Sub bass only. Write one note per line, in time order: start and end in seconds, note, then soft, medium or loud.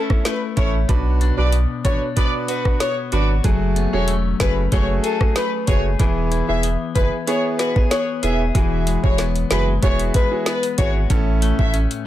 0.57 0.85 A1 medium
0.89 1.31 B1 loud
1.38 1.65 B1 loud
1.85 1.99 A1 loud
3.12 3.40 G#1 medium
3.44 3.86 F#1 loud
3.93 4.34 E1 medium
4.40 4.68 F#1 loud
4.72 5.00 F#1 loud
5.68 5.95 F#1 medium
6.00 6.42 E1 loud
6.48 6.76 E1 loud
6.96 7.10 F#1 medium
8.23 8.51 E1 medium
8.55 8.97 E1 loud
9.04 9.44 E1 medium
9.51 9.78 F#1 loud
9.83 10.10 E1 loud
10.78 11.06 G#1 medium
11.10 11.52 A1 loud
11.59 11.87 A1 loud